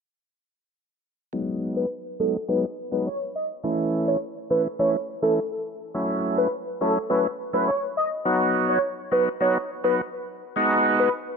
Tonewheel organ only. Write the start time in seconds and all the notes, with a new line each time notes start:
1.33 F#3 G#3 B3 D#4
2.20 F#3 G#3 B3 D#4
2.48 F#3 G#3 B3 D#4
2.91 F#3 G#3 B3 D#4
3.64 E3 A3 C#4 E4
4.50 E3 A3 C#4 E4
4.79 E3 A3 C#4 E4
5.22 E3 A3 C#4 E4
5.95 F#3 A3 C#4 E4
6.81 F#3 A3 C#4 E4
7.10 F#3 A3 C#4 E4
7.53 F#3 A3 C#4 E4
8.25 F#3 B3 D#4 F#4
9.12 F#3 B3 D#4 F#4
9.40 F#3 B3 D#4 F#4
9.84 F#3 B3 D#4 F#4
10.56 G#3 B3 D#4 F#4